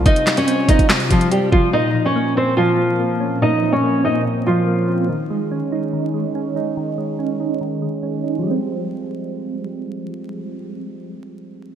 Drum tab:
HH |xxxxx-xxxxxxx---|----------------|----------------|----------------|
CP |--x-----x-------|----------------|----------------|----------------|
SD |--o-----o-------|----------------|----------------|----------------|
BD |o-----oo--o---o-|----------------|----------------|----------------|

HH |----------------|----------------|----------------|
CP |----------------|----------------|----------------|
SD |----------------|----------------|----------------|
BD |----------------|----------------|----------------|